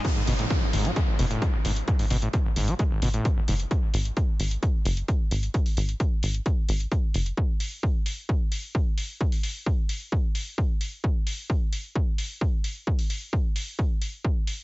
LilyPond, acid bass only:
\new Staff \with { instrumentName = "Acid bass" } { \clef bass \time 4/4 \key gis \phrygian \tempo 4 = 131 gis,16 gis,16 b,16 a,16 b,16 gis,,16 gis,16 fis16 gis16 gis,,16 b,16 a,16 b,16 gis,,16 gis,16 r16 | gis,16 gis,16 b,16 a,16 b,16 gis,,16 gis,16 fis16 gis16 gis,,16 b,16 a,16 b,16 gis,,16 gis,16 r16 | r1 | r1 |
r1 | r1 | r1 | r1 | }